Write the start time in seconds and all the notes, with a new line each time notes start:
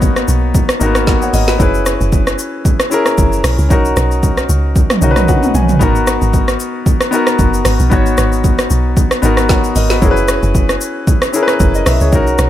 Already playing: G#1 A#3 B3 D#4 F#4 A#4 C#5
0.02 kick, shaker
0.16 cross-stick, shaker
0.28 B1, shaker
0.55 kick, shaker
0.69 cross-stick, shaker
0.80 G#1 A#3 D#4 F#4 A#4, shaker
0.86 B3
0.95 cross-stick, shaker
1.07 kick, snare, shaker
1.22 C#5 F#5, shaker
1.34 G#1 A#4 D#5, open hi-hat, shaker
1.48 F#4 B4, snare, shaker
1.58 F#1 C#4 E4 G#4 B4, kick, shaker
1.74 shaker
1.86 cross-stick, shaker
2.01 F#1, shaker
2.12 kick, shaker
2.27 cross-stick, shaker
2.39 shaker
2.65 kick, shaker
2.80 cross-stick, shaker
2.90 C#4 E4 G#4 A#4, shaker
3.06 cross-stick, shaker
3.18 F#1, kick, shaker
3.33 shaker
3.44 B1, cross-stick, open hi-hat, shaker
3.58 C#2, shaker
3.69 B1 C#4 D#4 F#4 A#4, kick, shaker
3.85 shaker
3.97 B1, cross-stick, shaker
4.11 shaker
4.23 kick, shaker
4.37 cross-stick, shaker
4.49 C#2, shaker
4.76 kick, shaker
4.90 cross-stick, mid tom, shaker
5.01 B1 C#4 D#4 F#4 A#4 D#5, shaker
5.11 B4
5.16 cross-stick, mid tom, shaker
5.28 F#5, kick, high tom, shaker
5.43 mid tom, shaker
5.55 B1 G#5, mid tom, shaker
5.69 floor tom, shaker
5.79 G#1 B3 D#4 F#4 A#4, kick, shaker
5.96 shaker
6.07 cross-stick, shaker
6.22 G#1, shaker
6.34 kick, shaker
6.48 cross-stick, shaker
6.60 shaker
6.86 kick, shaker
7.01 cross-stick, shaker
7.11 B3 D#4 F#4 A#4, shaker
7.27 cross-stick, shaker
7.39 F#1, kick, shaker
7.54 shaker
7.65 G#1, cross-stick, open hi-hat, shaker
7.79 B1, shaker
7.90 G#1 B3 D#4 F#4 C#5, kick, shaker
8.06 shaker
8.18 G#1, cross-stick, shaker
8.32 shaker
8.44 kick, shaker
8.59 cross-stick, shaker
8.70 B1, shaker
8.97 kick, shaker
9.11 cross-stick, shaker
9.22 G#1 B3 D#4 F#4 A#4, shaker
9.37 cross-stick, shaker
9.49 C#5 F#5, kick, snare, shaker
9.64 shaker
9.76 G#1 A#4 D#5, open hi-hat, shaker
9.90 F#4 B4, snare, shaker
10.01 F#1 C#4 E4 G#4 A#4, kick, shaker
10.11 B4
10.17 shaker
10.28 cross-stick, shaker
10.43 F#1, shaker
10.55 kick, shaker
10.69 cross-stick, shaker
10.81 shaker
11.07 kick, shaker
11.22 cross-stick, shaker
11.32 C#4 E4 G#4 A#4, shaker
11.43 B4
11.48 cross-stick, shaker
11.60 F#1, kick, shaker
11.75 A#4 D#5, shaker
11.86 B1 B4 E5, cross-stick, open hi-hat, shaker
12.01 C#2 G#4 C#5, shaker
12.12 B1 C#4 D#4 F#4 A#4, kick, shaker
12.27 shaker
12.38 B1, cross-stick, shaker